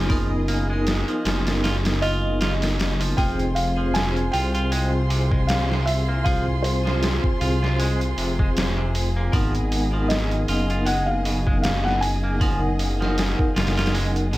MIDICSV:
0, 0, Header, 1, 8, 480
1, 0, Start_track
1, 0, Tempo, 769231
1, 62, Time_signature, 4, 2, 24, 8
1, 8971, End_track
2, 0, Start_track
2, 0, Title_t, "Felt piano"
2, 0, Program_c, 0, 0
2, 1258, Note_on_c, 0, 75, 87
2, 1977, Note_on_c, 0, 79, 106
2, 2002, Note_off_c, 0, 75, 0
2, 2215, Note_on_c, 0, 77, 93
2, 2227, Note_off_c, 0, 79, 0
2, 2458, Note_on_c, 0, 80, 98
2, 2466, Note_off_c, 0, 77, 0
2, 2683, Note_off_c, 0, 80, 0
2, 2693, Note_on_c, 0, 79, 106
2, 3415, Note_on_c, 0, 77, 88
2, 3440, Note_off_c, 0, 79, 0
2, 3655, Note_on_c, 0, 76, 90
2, 3666, Note_off_c, 0, 77, 0
2, 3881, Note_off_c, 0, 76, 0
2, 3895, Note_on_c, 0, 77, 93
2, 4121, Note_off_c, 0, 77, 0
2, 4134, Note_on_c, 0, 72, 74
2, 5073, Note_off_c, 0, 72, 0
2, 6293, Note_on_c, 0, 75, 81
2, 6772, Note_on_c, 0, 78, 100
2, 6792, Note_off_c, 0, 75, 0
2, 6903, Note_on_c, 0, 77, 93
2, 6915, Note_off_c, 0, 78, 0
2, 7243, Note_off_c, 0, 77, 0
2, 7252, Note_on_c, 0, 77, 93
2, 7381, Note_off_c, 0, 77, 0
2, 7385, Note_on_c, 0, 78, 100
2, 7493, Note_on_c, 0, 80, 104
2, 7500, Note_off_c, 0, 78, 0
2, 7953, Note_off_c, 0, 80, 0
2, 8971, End_track
3, 0, Start_track
3, 0, Title_t, "Violin section"
3, 0, Program_c, 1, 48
3, 0, Note_on_c, 1, 68, 70
3, 0, Note_on_c, 1, 75, 64
3, 1958, Note_off_c, 1, 68, 0
3, 1959, Note_off_c, 1, 75, 0
3, 1983, Note_on_c, 1, 68, 79
3, 1984, Note_on_c, 1, 65, 71
3, 1984, Note_on_c, 1, 72, 69
3, 1985, Note_on_c, 1, 84, 76
3, 5798, Note_off_c, 1, 65, 0
3, 5798, Note_off_c, 1, 72, 0
3, 5799, Note_off_c, 1, 84, 0
3, 5823, Note_on_c, 1, 75, 64
3, 8971, Note_off_c, 1, 68, 0
3, 8971, Note_off_c, 1, 75, 0
3, 8971, End_track
4, 0, Start_track
4, 0, Title_t, "Synth drone"
4, 0, Program_c, 2, 95
4, 0, Note_on_c, 2, 65, 84
4, 1991, Note_off_c, 2, 65, 0
4, 8971, End_track
5, 0, Start_track
5, 0, Title_t, "Vibraphone"
5, 0, Program_c, 3, 11
5, 0, Control_c, 3, 64, 127
5, 57, Note_on_c, 3, 59, 86
5, 61, Note_on_c, 3, 63, 84
5, 70, Note_on_c, 3, 70, 98
5, 401, Note_off_c, 3, 59, 0
5, 403, Note_off_c, 3, 63, 0
5, 407, Note_off_c, 3, 70, 0
5, 436, Note_on_c, 3, 63, 77
5, 454, Note_on_c, 3, 70, 96
5, 1957, Note_off_c, 3, 63, 0
5, 1966, Note_off_c, 3, 70, 0
5, 1982, Note_on_c, 3, 60, 93
5, 1986, Note_on_c, 3, 65, 77
5, 1989, Note_on_c, 3, 68, 85
5, 1991, Control_c, 3, 64, 0
5, 1993, Note_on_c, 3, 72, 95
5, 2084, Control_c, 3, 64, 127
5, 2323, Note_off_c, 3, 60, 0
5, 2325, Note_off_c, 3, 65, 0
5, 2327, Note_off_c, 3, 68, 0
5, 2329, Note_off_c, 3, 72, 0
5, 2347, Note_on_c, 3, 60, 80
5, 2356, Note_on_c, 3, 65, 73
5, 2364, Note_on_c, 3, 68, 74
5, 2373, Note_on_c, 3, 72, 85
5, 3872, Note_off_c, 3, 60, 0
5, 3877, Note_off_c, 3, 65, 0
5, 3881, Note_off_c, 3, 68, 0
5, 3885, Note_off_c, 3, 72, 0
5, 3898, Note_on_c, 3, 60, 91
5, 3903, Note_on_c, 3, 65, 81
5, 3907, Note_on_c, 3, 68, 84
5, 3911, Note_on_c, 3, 72, 109
5, 4242, Note_off_c, 3, 60, 0
5, 4244, Note_off_c, 3, 65, 0
5, 4246, Note_off_c, 3, 68, 0
5, 4248, Note_off_c, 3, 72, 0
5, 4264, Note_on_c, 3, 60, 93
5, 4275, Note_on_c, 3, 65, 78
5, 4282, Note_on_c, 3, 68, 83
5, 4290, Note_on_c, 3, 72, 101
5, 5791, Note_off_c, 3, 60, 0
5, 5796, Note_off_c, 3, 65, 0
5, 5800, Note_off_c, 3, 68, 0
5, 5804, Note_off_c, 3, 72, 0
5, 5818, Note_on_c, 3, 59, 90
5, 5824, Note_on_c, 3, 63, 79
5, 5828, Note_on_c, 3, 78, 84
5, 5832, Control_c, 3, 64, 0
5, 5832, Note_on_c, 3, 70, 98
5, 5922, Control_c, 3, 64, 127
5, 6161, Note_off_c, 3, 59, 0
5, 6164, Note_off_c, 3, 63, 0
5, 6166, Note_off_c, 3, 78, 0
5, 6168, Note_off_c, 3, 70, 0
5, 6185, Note_on_c, 3, 59, 79
5, 6194, Note_on_c, 3, 63, 78
5, 6212, Note_on_c, 3, 70, 88
5, 7712, Note_off_c, 3, 59, 0
5, 7716, Note_off_c, 3, 63, 0
5, 7725, Note_off_c, 3, 70, 0
5, 7743, Note_on_c, 3, 63, 86
5, 7748, Note_on_c, 3, 78, 83
5, 7752, Note_on_c, 3, 70, 103
5, 8084, Note_off_c, 3, 63, 0
5, 8087, Note_off_c, 3, 78, 0
5, 8088, Note_off_c, 3, 70, 0
5, 8113, Note_on_c, 3, 63, 78
5, 8130, Note_on_c, 3, 70, 100
5, 8971, Note_off_c, 3, 63, 0
5, 8971, Note_off_c, 3, 70, 0
5, 8971, End_track
6, 0, Start_track
6, 0, Title_t, "Clean electric guitar"
6, 0, Program_c, 4, 27
6, 61, Note_on_c, 4, 53, 84
6, 188, Note_off_c, 4, 53, 0
6, 302, Note_on_c, 4, 58, 75
6, 422, Note_off_c, 4, 58, 0
6, 435, Note_on_c, 4, 56, 71
6, 662, Note_off_c, 4, 56, 0
6, 675, Note_on_c, 4, 53, 70
6, 774, Note_off_c, 4, 53, 0
6, 781, Note_on_c, 4, 53, 73
6, 1011, Note_off_c, 4, 53, 0
6, 1021, Note_on_c, 4, 65, 73
6, 1098, Note_off_c, 4, 65, 0
6, 1262, Note_on_c, 4, 65, 102
6, 1492, Note_off_c, 4, 65, 0
6, 1502, Note_on_c, 4, 65, 80
6, 1578, Note_off_c, 4, 65, 0
6, 1877, Note_on_c, 4, 53, 73
6, 1972, Note_off_c, 4, 53, 0
6, 1983, Note_on_c, 4, 53, 99
6, 2109, Note_off_c, 4, 53, 0
6, 2355, Note_on_c, 4, 53, 77
6, 2691, Note_off_c, 4, 53, 0
6, 2703, Note_on_c, 4, 65, 71
6, 2828, Note_off_c, 4, 65, 0
6, 2835, Note_on_c, 4, 65, 79
6, 2937, Note_off_c, 4, 65, 0
6, 2944, Note_on_c, 4, 56, 92
6, 3070, Note_off_c, 4, 56, 0
6, 3183, Note_on_c, 4, 48, 73
6, 3309, Note_off_c, 4, 48, 0
6, 3315, Note_on_c, 4, 56, 72
6, 3376, Note_off_c, 4, 56, 0
6, 3556, Note_on_c, 4, 48, 68
6, 3657, Note_off_c, 4, 48, 0
6, 3797, Note_on_c, 4, 58, 72
6, 3898, Note_off_c, 4, 58, 0
6, 3903, Note_on_c, 4, 53, 102
6, 4029, Note_off_c, 4, 53, 0
6, 4277, Note_on_c, 4, 53, 72
6, 4612, Note_off_c, 4, 53, 0
6, 4625, Note_on_c, 4, 65, 71
6, 4750, Note_off_c, 4, 65, 0
6, 4758, Note_on_c, 4, 65, 80
6, 4858, Note_off_c, 4, 65, 0
6, 4865, Note_on_c, 4, 56, 92
6, 4990, Note_off_c, 4, 56, 0
6, 5105, Note_on_c, 4, 48, 77
6, 5230, Note_off_c, 4, 48, 0
6, 5238, Note_on_c, 4, 56, 77
6, 5298, Note_off_c, 4, 56, 0
6, 5477, Note_on_c, 4, 48, 76
6, 5578, Note_off_c, 4, 48, 0
6, 5719, Note_on_c, 4, 58, 75
6, 5818, Note_off_c, 4, 58, 0
6, 5823, Note_on_c, 4, 53, 103
6, 5949, Note_off_c, 4, 53, 0
6, 6198, Note_on_c, 4, 53, 72
6, 6533, Note_off_c, 4, 53, 0
6, 6545, Note_on_c, 4, 65, 73
6, 6670, Note_off_c, 4, 65, 0
6, 6679, Note_on_c, 4, 65, 79
6, 6779, Note_off_c, 4, 65, 0
6, 6784, Note_on_c, 4, 56, 104
6, 6910, Note_off_c, 4, 56, 0
6, 7024, Note_on_c, 4, 47, 72
6, 7150, Note_off_c, 4, 47, 0
6, 7157, Note_on_c, 4, 56, 76
6, 7217, Note_off_c, 4, 56, 0
6, 7397, Note_on_c, 4, 47, 73
6, 7497, Note_off_c, 4, 47, 0
6, 7635, Note_on_c, 4, 58, 71
6, 7737, Note_off_c, 4, 58, 0
6, 7742, Note_on_c, 4, 53, 101
6, 7869, Note_off_c, 4, 53, 0
6, 8115, Note_on_c, 4, 53, 76
6, 8451, Note_off_c, 4, 53, 0
6, 8463, Note_on_c, 4, 65, 77
6, 8587, Note_off_c, 4, 65, 0
6, 8595, Note_on_c, 4, 65, 77
6, 8697, Note_off_c, 4, 65, 0
6, 8701, Note_on_c, 4, 56, 99
6, 8828, Note_off_c, 4, 56, 0
6, 8941, Note_on_c, 4, 47, 70
6, 8971, Note_off_c, 4, 47, 0
6, 8971, End_track
7, 0, Start_track
7, 0, Title_t, "Detuned saw bass"
7, 0, Program_c, 5, 39
7, 0, Note_on_c, 5, 30, 96
7, 649, Note_off_c, 5, 30, 0
7, 781, Note_on_c, 5, 30, 98
7, 1258, Note_off_c, 5, 30, 0
7, 1262, Note_on_c, 5, 30, 93
7, 1961, Note_off_c, 5, 30, 0
7, 1984, Note_on_c, 5, 29, 93
7, 2683, Note_off_c, 5, 29, 0
7, 2706, Note_on_c, 5, 36, 92
7, 4492, Note_off_c, 5, 36, 0
7, 4622, Note_on_c, 5, 36, 95
7, 5082, Note_off_c, 5, 36, 0
7, 5101, Note_on_c, 5, 29, 88
7, 5316, Note_off_c, 5, 29, 0
7, 5343, Note_on_c, 5, 29, 81
7, 5802, Note_off_c, 5, 29, 0
7, 5824, Note_on_c, 5, 32, 76
7, 6523, Note_off_c, 5, 32, 0
7, 6544, Note_on_c, 5, 30, 95
7, 8331, Note_off_c, 5, 30, 0
7, 8464, Note_on_c, 5, 30, 96
7, 8940, Note_off_c, 5, 30, 0
7, 8944, Note_on_c, 5, 34, 102
7, 8971, Note_off_c, 5, 34, 0
7, 8971, End_track
8, 0, Start_track
8, 0, Title_t, "Drums"
8, 61, Note_on_c, 9, 46, 80
8, 62, Note_on_c, 9, 36, 103
8, 123, Note_off_c, 9, 46, 0
8, 124, Note_off_c, 9, 36, 0
8, 301, Note_on_c, 9, 46, 59
8, 363, Note_off_c, 9, 46, 0
8, 541, Note_on_c, 9, 46, 79
8, 549, Note_on_c, 9, 38, 104
8, 603, Note_off_c, 9, 46, 0
8, 611, Note_off_c, 9, 38, 0
8, 675, Note_on_c, 9, 42, 38
8, 737, Note_off_c, 9, 42, 0
8, 782, Note_on_c, 9, 46, 77
8, 790, Note_on_c, 9, 38, 103
8, 845, Note_off_c, 9, 46, 0
8, 853, Note_off_c, 9, 38, 0
8, 916, Note_on_c, 9, 46, 73
8, 924, Note_on_c, 9, 38, 101
8, 978, Note_off_c, 9, 46, 0
8, 986, Note_off_c, 9, 38, 0
8, 1024, Note_on_c, 9, 46, 74
8, 1032, Note_on_c, 9, 38, 93
8, 1086, Note_off_c, 9, 46, 0
8, 1094, Note_off_c, 9, 38, 0
8, 1155, Note_on_c, 9, 46, 78
8, 1163, Note_on_c, 9, 38, 102
8, 1218, Note_off_c, 9, 46, 0
8, 1226, Note_off_c, 9, 38, 0
8, 1263, Note_on_c, 9, 46, 64
8, 1325, Note_off_c, 9, 46, 0
8, 1502, Note_on_c, 9, 46, 70
8, 1510, Note_on_c, 9, 38, 97
8, 1564, Note_off_c, 9, 46, 0
8, 1572, Note_off_c, 9, 38, 0
8, 1636, Note_on_c, 9, 46, 76
8, 1644, Note_on_c, 9, 38, 99
8, 1698, Note_off_c, 9, 46, 0
8, 1706, Note_off_c, 9, 38, 0
8, 1744, Note_on_c, 9, 46, 77
8, 1753, Note_on_c, 9, 38, 103
8, 1807, Note_off_c, 9, 46, 0
8, 1815, Note_off_c, 9, 38, 0
8, 1876, Note_on_c, 9, 46, 74
8, 1938, Note_off_c, 9, 46, 0
8, 1983, Note_on_c, 9, 36, 107
8, 1984, Note_on_c, 9, 46, 89
8, 2045, Note_off_c, 9, 36, 0
8, 2047, Note_off_c, 9, 46, 0
8, 2118, Note_on_c, 9, 42, 44
8, 2180, Note_off_c, 9, 42, 0
8, 2222, Note_on_c, 9, 46, 70
8, 2285, Note_off_c, 9, 46, 0
8, 2464, Note_on_c, 9, 46, 81
8, 2472, Note_on_c, 9, 38, 122
8, 2526, Note_off_c, 9, 46, 0
8, 2534, Note_off_c, 9, 38, 0
8, 2599, Note_on_c, 9, 42, 42
8, 2661, Note_off_c, 9, 42, 0
8, 2705, Note_on_c, 9, 46, 70
8, 2768, Note_off_c, 9, 46, 0
8, 2837, Note_on_c, 9, 42, 43
8, 2900, Note_off_c, 9, 42, 0
8, 2945, Note_on_c, 9, 46, 82
8, 3007, Note_off_c, 9, 46, 0
8, 3185, Note_on_c, 9, 46, 66
8, 3247, Note_off_c, 9, 46, 0
8, 3317, Note_on_c, 9, 36, 93
8, 3379, Note_off_c, 9, 36, 0
8, 3423, Note_on_c, 9, 46, 86
8, 3431, Note_on_c, 9, 38, 109
8, 3486, Note_off_c, 9, 46, 0
8, 3494, Note_off_c, 9, 38, 0
8, 3566, Note_on_c, 9, 38, 37
8, 3629, Note_off_c, 9, 38, 0
8, 3666, Note_on_c, 9, 46, 69
8, 3728, Note_off_c, 9, 46, 0
8, 3904, Note_on_c, 9, 36, 102
8, 3904, Note_on_c, 9, 46, 83
8, 3966, Note_off_c, 9, 36, 0
8, 3967, Note_off_c, 9, 46, 0
8, 4145, Note_on_c, 9, 46, 69
8, 4208, Note_off_c, 9, 46, 0
8, 4288, Note_on_c, 9, 38, 45
8, 4350, Note_off_c, 9, 38, 0
8, 4384, Note_on_c, 9, 46, 87
8, 4392, Note_on_c, 9, 38, 113
8, 4447, Note_off_c, 9, 46, 0
8, 4455, Note_off_c, 9, 38, 0
8, 4517, Note_on_c, 9, 36, 94
8, 4579, Note_off_c, 9, 36, 0
8, 4624, Note_on_c, 9, 46, 67
8, 4687, Note_off_c, 9, 46, 0
8, 4766, Note_on_c, 9, 38, 48
8, 4829, Note_off_c, 9, 38, 0
8, 4864, Note_on_c, 9, 46, 82
8, 4927, Note_off_c, 9, 46, 0
8, 5000, Note_on_c, 9, 42, 48
8, 5062, Note_off_c, 9, 42, 0
8, 5103, Note_on_c, 9, 46, 65
8, 5166, Note_off_c, 9, 46, 0
8, 5237, Note_on_c, 9, 36, 92
8, 5299, Note_off_c, 9, 36, 0
8, 5345, Note_on_c, 9, 46, 86
8, 5353, Note_on_c, 9, 38, 115
8, 5408, Note_off_c, 9, 46, 0
8, 5416, Note_off_c, 9, 38, 0
8, 5584, Note_on_c, 9, 46, 69
8, 5647, Note_off_c, 9, 46, 0
8, 5823, Note_on_c, 9, 36, 110
8, 5823, Note_on_c, 9, 46, 91
8, 5886, Note_off_c, 9, 36, 0
8, 5886, Note_off_c, 9, 46, 0
8, 5957, Note_on_c, 9, 42, 44
8, 6019, Note_off_c, 9, 42, 0
8, 6064, Note_on_c, 9, 46, 71
8, 6127, Note_off_c, 9, 46, 0
8, 6303, Note_on_c, 9, 46, 85
8, 6311, Note_on_c, 9, 38, 111
8, 6365, Note_off_c, 9, 46, 0
8, 6373, Note_off_c, 9, 38, 0
8, 6436, Note_on_c, 9, 42, 43
8, 6498, Note_off_c, 9, 42, 0
8, 6542, Note_on_c, 9, 46, 73
8, 6604, Note_off_c, 9, 46, 0
8, 6676, Note_on_c, 9, 42, 43
8, 6738, Note_off_c, 9, 42, 0
8, 6780, Note_on_c, 9, 46, 84
8, 6842, Note_off_c, 9, 46, 0
8, 7022, Note_on_c, 9, 46, 66
8, 7085, Note_off_c, 9, 46, 0
8, 7156, Note_on_c, 9, 36, 93
8, 7218, Note_off_c, 9, 36, 0
8, 7261, Note_on_c, 9, 46, 83
8, 7269, Note_on_c, 9, 38, 118
8, 7323, Note_off_c, 9, 46, 0
8, 7331, Note_off_c, 9, 38, 0
8, 7406, Note_on_c, 9, 38, 37
8, 7468, Note_off_c, 9, 38, 0
8, 7504, Note_on_c, 9, 46, 70
8, 7566, Note_off_c, 9, 46, 0
8, 7743, Note_on_c, 9, 36, 108
8, 7745, Note_on_c, 9, 46, 85
8, 7806, Note_off_c, 9, 36, 0
8, 7807, Note_off_c, 9, 46, 0
8, 7983, Note_on_c, 9, 46, 68
8, 8046, Note_off_c, 9, 46, 0
8, 8125, Note_on_c, 9, 38, 44
8, 8188, Note_off_c, 9, 38, 0
8, 8223, Note_on_c, 9, 46, 91
8, 8231, Note_on_c, 9, 38, 116
8, 8285, Note_off_c, 9, 46, 0
8, 8293, Note_off_c, 9, 38, 0
8, 8357, Note_on_c, 9, 36, 97
8, 8419, Note_off_c, 9, 36, 0
8, 8464, Note_on_c, 9, 46, 72
8, 8472, Note_on_c, 9, 38, 92
8, 8526, Note_off_c, 9, 46, 0
8, 8530, Note_on_c, 9, 46, 73
8, 8534, Note_off_c, 9, 38, 0
8, 8538, Note_on_c, 9, 38, 87
8, 8592, Note_off_c, 9, 46, 0
8, 8596, Note_on_c, 9, 46, 70
8, 8600, Note_off_c, 9, 38, 0
8, 8604, Note_on_c, 9, 38, 87
8, 8649, Note_off_c, 9, 46, 0
8, 8649, Note_on_c, 9, 46, 66
8, 8657, Note_off_c, 9, 38, 0
8, 8657, Note_on_c, 9, 38, 93
8, 8704, Note_off_c, 9, 46, 0
8, 8704, Note_on_c, 9, 46, 85
8, 8719, Note_off_c, 9, 38, 0
8, 8766, Note_off_c, 9, 46, 0
8, 8836, Note_on_c, 9, 42, 47
8, 8899, Note_off_c, 9, 42, 0
8, 8943, Note_on_c, 9, 46, 64
8, 8971, Note_off_c, 9, 46, 0
8, 8971, End_track
0, 0, End_of_file